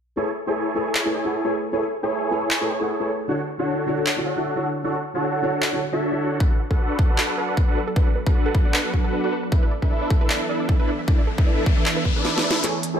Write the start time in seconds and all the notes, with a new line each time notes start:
0.16 A3 E4 G#4 A4 B4 C#5 G#5
0.46 A3 E4 G#4 A4 B4 C#5 G#5
0.74 A3 E4 G#4 A4 B4 C#5 G#5
0.95 clap
1.05 A3 E4 G#4 B4 C#5
1.14 E4 G#4 A4 C#5 G#5
1.24 A3 E4 G#4 B4 F#5
1.44 A3 E4 G#4 A4 B4 C#5 G#5
1.72 A3 E4 G#4 A4 B4 C#5 G#5
2.02 A3 E4 G#4 A4 B4 C#5 G#5
2.30 A3 E4 G#4 A4 B4 C#5 G#5
2.51 clap
2.61 A3 E4 G#4 B4 C#5
2.70 E4 G#4 A4 C#5 G#5
2.80 A3 E4 G#4 B4 F#5
2.99 A3 E4 G#4 A4 B4 C#5 G#5
3.28 D3 D4 E4 F#4 A4 C#5 F#5
3.58 D3 D4 E4 F#4 A4 C#5 F#5
3.86 D3 D4 E4 F#4 A4 C#5 F#5
4.06 clap
4.16 D3 D4 E4 F#4 C#5
4.26 D4 F#4 A4 C#5 F#5
4.36 D3 D4 E4 F#4 E5
4.55 D3 D4 E4 F#4 A4 C#5 F#5
4.83 D3 D4 E4 F#4 A4 C#5 F#5
5.14 D3 D4 E4 F#4 A4 C#5 F#5
5.42 D3 D4 E4 F#4 A4 C#5 F#5
5.62 clap
5.72 D3 D4 E4 F#4 C#5
5.92 D3 D4 E4 F#4 A4 C#5 E5
6.11 D3 D4 E4 F#4 C#5
6.21 D4 F#4 A4 C#5 F#5
6.40 F#3 B3 D4 F#4 A4 B4 F#5, kick
6.51 B4
6.60 F#4
6.70 D4 F#4 A4 B4 F#5, kick
6.79 B4
6.90 D5
6.99 D4 F#4 A4 B4 F#5, kick
7.10 B4
7.18 F#4, clap
7.29 A4
7.38 D4 F#4 A4 B4 F#5
7.49 D5
7.57 B4, kick
7.68 D4 F#4 A4 B4 F#5
7.77 F#4
7.88 A4
7.96 D4 F#4 A4 B4 F#5, kick
8.07 D5
8.16 B4
8.26 D4 F#4 A4 B4 F#5, kick
8.35 F#4
8.46 A4
8.55 D4 F#4 B4 F#5, kick
8.65 D5
8.74 B4, clap
8.85 B4
8.94 D4 F#4 A4, kick
9.04 A4
9.13 B4
9.24 D4 F#4 A4 B4 D5 F#5
9.32 B4
9.43 B4
9.52 E3 D4 E4 A4 B4 E5, kick, riser
9.63 B4
9.71 D5
9.82 D4 E4 A4 B4 E5, kick
9.91 D5
10.02 D5
10.10 D4 E4 A4 E5, kick
10.21 B4
10.30 D5, clap
10.41 E5
10.49 D4 E4 A4 B4 D5 E5
10.60 D5
10.69 A4, kick
10.80 D4 E4 A4 B4 E5
10.88 D5
10.99 E5
11.08 D4 E4 A4 B4 D5 E5, kick
11.19 D5
11.27 A4
11.38 D4 E4 A4 B4 E5, kick
11.47 D5
11.58 E5
11.66 D4 E4 A4 D5 E5, kick
11.77 D5
11.86 A4, clap
11.97 B4
12.05 B4, kick
12.16 D4 E4 A4 B4 D5
12.25 D6, snare
12.36 E5, snare
12.44 D4 E4 A4 B4 D5 E5
12.51 snare
12.55 A4
12.63 E3 A3 C#4 E4 G#4 A4 B4 C#5 G#5, clap, closed hi-hat, riser
12.83 closed hi-hat
12.93 A3 E4 G#4 A4 B4 C#5 G#5